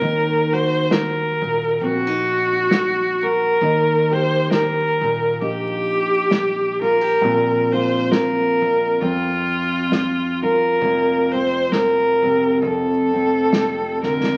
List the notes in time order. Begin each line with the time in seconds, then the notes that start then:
Already playing: A#4
0.01 D#2 D#3 D#4, kick
0.52 F#4 C5
0.91 A#4, muted steel-string acoustic guitar stroke, snare
1.41 A#2, kick
1.81 A#1 C4 F#4, kick
2.07 D#4
2.71 muted steel-string acoustic guitar stroke, snare
3.23 F#4 A#4
3.61 D#2 D#3 D#4, kick
4.11 G4 C5
4.51 A#4, muted steel-string acoustic guitar stroke, snare
5.01 A#2, kick
5.41 A#1 D#4 G4, kick
6.31 muted steel-string acoustic guitar stroke, snare
6.81 F4 A#4
7.01 G4
7.21 A#1 A#2 C4, kick
7.72 F4 C5
8.12 A#4, muted steel-string acoustic guitar stroke, snare
8.62 F2, kick
9.01 F2 C4 F4, kick
9.92 muted steel-string acoustic guitar stroke, snare
10.42 F4 A#4
10.81 F1 F2 A#3, kick
11.32 C4 C5
11.72 A#4, muted steel-string acoustic guitar stroke, snare
12.22 C3, kick
12.62 F1 F2 A4, kick
13.14 C4
13.53 C3, snare
14.03 D3 A#4, snare
14.23 snare